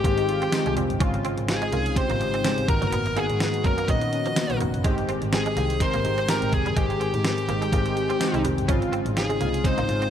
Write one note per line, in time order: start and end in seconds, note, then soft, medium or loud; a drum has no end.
0.00 0.04 D#3 loud
0.00 0.24 D#3 loud
0.00 0.04 G#3 medium
0.00 0.05 C4 medium
0.00 0.05 G4 loud
0.00 0.73 G4 medium
0.00 1.02 G#4 loud
0.00 0.73 G5 medium
0.04 0.22 G#1 loud
0.04 0.24 G#3 loud
0.04 0.12 A#3 medium
0.04 0.24 C4 loud
0.04 0.24 G4 loud
0.04 kick medium
0.04 closed hi-hat medium
0.18 muted clean electric guitar stroke soft
0.18 closed hi-hat medium
0.28 0.48 D#3 medium
0.28 0.48 G#3 medium
0.28 0.48 C4 medium
0.28 0.48 F4 medium
0.28 closed hi-hat medium
0.42 0.48 C4 medium
0.42 closed hi-hat soft
0.52 0.72 D#3 loud
0.52 0.72 G#3 loud
0.52 0.72 C4 loud
0.52 0.72 G4 loud
0.52 muted clean electric guitar stroke soft
0.52 snare loud
0.52 closed hi-hat loud
0.52 tambourine medium
0.66 0.74 C2 medium
0.66 0.72 G#3 medium
0.66 closed hi-hat medium
0.76 0.86 F1 medium
0.76 0.96 D#3 medium
0.76 0.84 G3 medium
0.76 0.96 G#3 medium
0.76 0.96 C4 medium
0.76 0.96 G4 loud
0.76 closed hi-hat medium
0.90 0.98 G1 medium
0.90 closed hi-hat medium
1.00 1.19 G#1 loud
1.00 1.20 C#3 loud
1.00 1.20 G#3 loud
1.00 1.20 C4 loud
1.00 1.08 C#4 medium
1.00 1.20 F4 loud
1.00 kick loud
1.00 closed hi-hat loud
1.14 muted clean electric guitar stroke soft
1.14 closed hi-hat soft
1.24 1.44 C#3 medium
1.24 1.44 G#3 medium
1.24 1.44 C4 medium
1.24 1.32 C4 medium
1.24 1.44 F4 medium
1.24 closed hi-hat medium
1.38 1.56 G#1 loud
1.38 closed hi-hat medium
1.48 1.68 C#3 medium
1.48 1.68 G#3 medium
1.48 1.68 C4 medium
1.48 1.68 D#4 medium
1.48 1.94 G#4 medium
1.48 1.93 G#5 medium
1.48 muted clean electric guitar stroke soft
1.48 snare loud
1.48 closed hi-hat medium
1.48 tambourine medium
1.62 1.68 G#3 medium
1.62 closed hi-hat medium
1.72 1.91 C2 medium
1.72 1.92 C#3 medium
1.72 1.92 G#3 medium
1.72 1.80 A#3 medium
1.72 1.92 C4 medium
1.72 1.92 F4 medium
1.72 closed hi-hat medium
1.86 closed hi-hat medium
1.96 2.16 C#3 loud
1.96 2.16 G#3 medium
1.96 2.16 C4 medium
1.96 2.16 G4 loud
1.96 2.69 C5 medium
1.96 2.65 C6 medium
1.96 kick medium
1.96 closed hi-hat medium
2.10 2.18 G#1 loud
2.10 2.16 A#3 medium
2.10 closed hi-hat medium
2.20 2.39 G#2 medium
2.20 2.40 C#3 medium
2.20 2.40 G#3 medium
2.20 2.40 C4 medium
2.20 2.40 D#4 medium
2.20 muted clean electric guitar stroke soft
2.20 closed hi-hat medium
2.34 2.40 C4 medium
2.34 closed hi-hat soft
2.44 2.64 C#3 loud
2.44 2.64 G#3 medium
2.44 2.52 G#3 medium
2.44 2.64 C4 medium
2.44 2.64 G4 loud
2.44 snare loud
2.44 closed hi-hat loud
2.44 tambourine medium
2.58 2.66 G#1 medium
2.58 closed hi-hat medium
2.68 2.78 G#1 loud
2.68 3.08 D#3 medium
2.68 3.08 A#3 medium
2.68 3.08 B3 medium
2.68 3.08 F#4 medium
2.68 3.18 A#4 loud
2.68 3.13 A#5 medium
2.68 muted clean electric guitar stroke soft
2.68 kick loud
2.68 closed hi-hat medium
2.82 2.90 F#1 medium
2.82 2.88 F#3 medium
2.82 closed hi-hat medium
2.92 3.11 G#1 loud
2.92 3.00 B3 medium
2.92 closed hi-hat loud
3.06 muted clean electric guitar stroke soft
3.06 closed hi-hat soft
3.16 3.36 D#3 medium
3.16 3.36 A#3 medium
3.16 3.24 A#3 medium
3.16 3.36 B3 medium
3.16 3.36 F#4 medium
3.16 3.66 G#4 loud
3.16 3.61 G#5 medium
3.16 closed hi-hat medium
3.30 3.48 G#2 loud
3.30 closed hi-hat medium
3.40 3.60 D#3 medium
3.40 3.60 A#3 medium
3.40 3.60 B3 medium
3.40 3.60 F#4 medium
3.40 muted clean electric guitar stroke soft
3.40 snare loud
3.40 closed hi-hat medium
3.40 tambourine medium
3.54 closed hi-hat medium
3.64 3.83 F#2 medium
3.64 3.84 D#3 medium
3.64 3.72 G#3 medium
3.64 3.84 A#3 medium
3.64 3.84 B3 medium
3.64 3.84 C#4 medium
3.64 3.90 A#4 medium
3.64 3.87 A#5 medium
3.64 kick medium
3.64 closed hi-hat medium
3.78 3.84 A#3 medium
3.78 closed hi-hat medium
3.88 4.06 A#2 loud
3.88 4.08 D#3 medium
3.88 3.96 F#3 medium
3.88 4.08 A#3 medium
3.88 4.08 B3 medium
3.88 4.08 F#4 loud
3.88 4.57 D#5 medium
3.88 4.57 D#6 medium
3.88 kick medium
3.88 closed hi-hat medium
4.01 muted clean electric guitar stroke soft
4.01 closed hi-hat medium
4.12 4.32 D#3 medium
4.12 4.32 A#3 medium
4.12 4.32 B3 medium
4.12 4.32 C#4 medium
4.12 closed hi-hat medium
4.26 4.32 F3 medium
4.26 closed hi-hat soft
4.36 4.56 D#3 medium
4.36 4.56 A#3 medium
4.36 4.56 B3 medium
4.36 4.56 F#4 loud
4.36 muted clean electric guitar stroke soft
4.36 snare loud
4.36 closed hi-hat loud
4.36 tambourine medium
4.50 4.58 A#1 medium
4.50 4.56 F#3 medium
4.50 closed hi-hat medium
4.60 4.71 F1 medium
4.60 4.80 D#3 medium
4.60 4.80 A#3 medium
4.60 4.68 A#3 medium
4.60 4.80 B3 medium
4.60 4.80 F#4 medium
4.60 closed hi-hat medium
4.74 4.82 F#1 medium
4.74 closed hi-hat medium
4.84 5.03 G#1 medium
4.84 5.04 D#3 loud
4.84 5.04 G#3 loud
4.84 4.92 G#3 medium
4.84 5.04 C4 loud
4.84 5.04 G4 loud
4.84 kick loud
4.84 closed hi-hat medium
4.98 muted clean electric guitar stroke soft
4.98 closed hi-hat soft
5.08 5.28 D#3 medium
5.08 5.28 G#3 medium
5.08 5.16 C4 medium
5.08 5.28 C4 medium
5.08 5.28 G4 loud
5.08 closed hi-hat medium
5.22 5.40 G#1 medium
5.22 closed hi-hat medium
5.32 5.52 D#3 medium
5.32 5.52 G#3 medium
5.32 5.52 C4 medium
5.32 5.52 G4 medium
5.32 5.83 G#4 medium
5.32 5.78 G#5 medium
5.32 muted clean electric guitar stroke soft
5.32 snare loud
5.32 closed hi-hat medium
5.32 tambourine medium
5.46 5.52 G#3 medium
5.46 closed hi-hat medium
5.56 5.75 C2 loud
5.56 5.76 D#3 medium
5.56 5.76 G#3 medium
5.56 5.64 A#3 medium
5.56 5.76 C4 medium
5.56 5.76 G4 medium
5.56 closed hi-hat medium
5.70 closed hi-hat medium
5.80 6.00 D#3 medium
5.80 6.00 G#3 medium
5.80 6.00 C4 medium
5.80 6.00 A#4 loud
5.80 6.30 C5 loud
5.80 6.26 C6 medium
5.80 kick medium
5.80 closed hi-hat medium
5.94 6.02 G#1 medium
5.94 6.00 A#3 medium
5.94 closed hi-hat medium
6.04 6.23 G#2 medium
6.04 6.24 D#3 medium
6.04 6.24 G#3 medium
6.04 6.24 C4 medium
6.04 6.25 G4 medium
6.04 muted clean electric guitar stroke soft
6.04 closed hi-hat medium
6.18 6.24 C4 medium
6.18 closed hi-hat soft
6.28 6.48 D#3 medium
6.28 6.48 G#3 medium
6.28 6.36 G#3 medium
6.28 6.48 C4 medium
6.28 6.49 G4 loud
6.28 6.52 A#4 loud
6.28 6.51 A#5 medium
6.28 snare loud
6.28 closed hi-hat loud
6.28 tambourine medium
6.42 6.50 G#1 medium
6.42 closed hi-hat medium
6.52 6.63 F1 medium
6.52 6.72 D#3 medium
6.52 6.72 G#3 medium
6.52 6.72 C4 medium
6.52 6.73 G4 medium
6.52 6.77 G#4 medium
6.52 6.75 G#5 medium
6.52 muted clean electric guitar stroke soft
6.52 kick loud
6.52 closed hi-hat medium
6.66 6.74 G1 medium
6.66 6.72 G3 medium
6.66 closed hi-hat medium
6.76 6.95 G#1 loud
6.76 6.96 D#3 medium
6.76 6.96 G#3 medium
6.76 6.84 G#3 medium
6.76 6.96 C4 medium
6.76 8.41 G4 medium
6.76 6.97 G#4 loud
6.76 8.41 G5 medium
6.76 kick loud
6.76 closed hi-hat loud
6.90 muted clean electric guitar stroke soft
6.90 closed hi-hat soft
7.00 7.20 D#3 medium
7.00 7.20 G#3 medium
7.00 7.08 C4 medium
7.00 7.20 C4 medium
7.00 7.20 G#4 medium
7.00 closed hi-hat medium
7.14 7.32 G#2 loud
7.14 closed hi-hat medium
7.24 7.44 D#3 medium
7.24 7.44 G#3 medium
7.24 7.44 C4 medium
7.24 7.44 G4 medium
7.24 muted clean electric guitar stroke soft
7.24 snare loud
7.24 closed hi-hat medium
7.24 tambourine medium
7.38 closed hi-hat medium
7.48 7.67 G#1 loud
7.48 7.68 D#3 loud
7.48 7.68 G#3 medium
7.48 7.56 A#3 medium
7.48 7.68 C4 medium
7.48 7.69 G4 loud
7.48 closed hi-hat medium
7.62 7.68 G#3 medium
7.62 closed hi-hat medium
7.72 7.90 G#1 loud
7.72 7.92 D#3 loud
7.72 7.92 G#3 loud
7.72 7.80 A#3 medium
7.72 7.92 C4 loud
7.72 7.93 G4 loud
7.72 kick medium
7.72 closed hi-hat medium
7.86 muted clean electric guitar stroke soft
7.86 closed hi-hat medium
7.96 8.16 D#3 medium
7.96 8.16 G#3 medium
7.96 8.16 C4 medium
7.96 8.17 G4 medium
7.96 closed hi-hat medium
8.10 8.16 C4 medium
8.10 closed hi-hat soft
8.20 8.40 D#3 loud
8.20 8.40 G#3 loud
8.20 8.40 C4 loud
8.20 8.41 G4 loud
8.20 muted clean electric guitar stroke soft
8.20 snare loud
8.20 closed hi-hat loud
8.20 tambourine medium
8.34 8.42 C2 medium
8.34 8.40 G#3 medium
8.34 closed hi-hat medium
8.44 8.55 F1 medium
8.44 8.64 D#3 medium
8.44 8.52 G3 medium
8.44 8.64 G#3 medium
8.44 8.64 C4 medium
8.44 8.64 G4 loud
8.44 closed hi-hat medium
8.58 8.66 G1 medium
8.58 closed hi-hat medium
8.68 8.87 G#1 loud
8.68 8.88 C#3 loud
8.68 8.88 G#3 loud
8.68 8.88 C4 loud
8.68 8.76 C#4 medium
8.68 8.88 F4 loud
8.68 kick loud
8.68 closed hi-hat loud
8.82 muted clean electric guitar stroke soft
8.82 closed hi-hat soft
8.92 9.12 C#3 medium
8.92 9.12 G#3 medium
8.92 9.00 C4 medium
8.92 9.12 C4 medium
8.92 9.12 F4 loud
8.92 closed hi-hat medium
9.06 9.24 G#1 loud
9.06 closed hi-hat medium
9.16 9.36 C#3 medium
9.16 9.36 G#3 medium
9.16 9.36 C4 medium
9.16 9.36 D#4 medium
9.16 9.67 G#4 medium
9.16 9.61 G#5 medium
9.16 muted clean electric guitar stroke soft
9.16 snare loud
9.16 closed hi-hat medium
9.16 tambourine medium
9.30 9.36 G#3 medium
9.30 closed hi-hat medium
9.40 9.59 C2 medium
9.40 9.60 C#3 medium
9.40 9.60 G#3 medium
9.40 9.48 A#3 medium
9.40 9.60 C4 medium
9.40 9.60 F4 medium
9.40 closed hi-hat medium
9.54 closed hi-hat medium
9.64 9.84 C#3 medium
9.64 9.84 G#3 medium
9.64 9.84 C4 medium
9.64 9.84 D#4 loud
9.64 10.10 C5 medium
9.64 10.10 C6 medium
9.64 kick medium
9.64 closed hi-hat medium
9.78 9.86 G#1 medium
9.78 9.84 A#3 medium
9.78 closed hi-hat medium
9.88 10.07 G#2 loud
9.88 10.08 C#3 medium
9.88 10.08 G#3 medium
9.88 10.08 C4 medium
9.88 10.08 F4 medium
9.88 muted clean electric guitar stroke soft
9.88 closed hi-hat medium
10.02 10.08 C4 medium
10.02 closed hi-hat soft